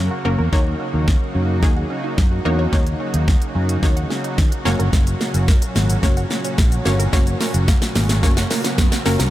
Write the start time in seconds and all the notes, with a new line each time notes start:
Already playing: C#3 F#3 A#3 F#4 A#4
0.11 F#4
0.25 F#1 A#3 C#4 F#4 A#4
0.39 E2 A#4
0.52 D#2 A#3 C#4 D#4 F#4 C#5, kick, snare
0.80 C#4
0.94 D#2
1.08 C#4, kick, snare
1.35 F#2 C#4
1.63 D#2 A#3 C#4 D#4 F#4 G#4, kick, snare
1.76 F#5
1.90 C#4
2.04 D#4
2.18 F#2 C#4, kick, snare
2.31 F#4
2.45 E2 A#3 C#4 D#4 F#4 C#5
2.59 C#5
2.73 D#2 A#3 C#4 D#4 F#4 C#5, kick, snare
2.87 closed hi-hat
3.00 C#4
3.14 D#2, closed hi-hat
3.28 C#4, kick, snare
3.42 closed hi-hat
3.55 F#2 C#4
3.69 closed hi-hat
3.83 D#2 A#3 C#4 D#4 F#4 C#5, kick, snare
3.96 F#5, closed hi-hat
4.10 C#4, snare
4.24 D#4, closed hi-hat
4.38 D#3 C#4, kick, snare
4.52 F#4, closed hi-hat
4.65 F#1 A#2 A#3 C#4 F#4 C#5, snare
4.79 G1 A#4, closed hi-hat
4.93 F#1 A#3, kick, snare, riser, shaker
5.07 closed hi-hat, shaker
5.21 A#3, snare, shaker
5.34 F#1, closed hi-hat, shaker
5.48 A#3, kick, snare, shaker
5.62 closed hi-hat, shaker
5.76 G#1 A#3, snare, shaker
5.90 closed hi-hat, shaker
6.03 F#1 A#3 C#4 F#4 C#5, kick, snare, shaker
6.17 F#5, closed hi-hat, shaker
6.30 A#3, snare, shaker
6.45 C#4, closed hi-hat, shaker
6.58 A#1 A#3, kick, snare, shaker
6.72 F#4, closed hi-hat, shaker
6.85 G1 A#3 C#4 F#4 C#5, snare, shaker
6.99 A#4, closed hi-hat, shaker
7.13 F#1 A#3 C#4 F#4 C#5, kick, snare, shaker
7.27 closed hi-hat, shaker
7.41 A#3, snare, open hi-hat, shaker
7.54 F#1, closed hi-hat, shaker
7.68 A#3, kick, snare, shaker
7.82 snare, closed hi-hat, shaker
7.95 G#1 A#3, snare, open hi-hat, shaker
8.09 snare, closed hi-hat, shaker
8.23 F#1 A#3 C#4 F#4 C#5, kick, snare, shaker
8.37 F#5, snare, closed hi-hat, shaker
8.50 A#3, snare, open hi-hat, shaker
8.64 C#4, snare, closed hi-hat, shaker
8.78 F#2 A#3, kick, snare, shaker
8.92 F#4, snare, closed hi-hat, shaker
9.06 F#1 A#3 C#4 F#4 A#4, snare, open hi-hat, shaker
9.19 C2 A#4, snare, closed hi-hat, shaker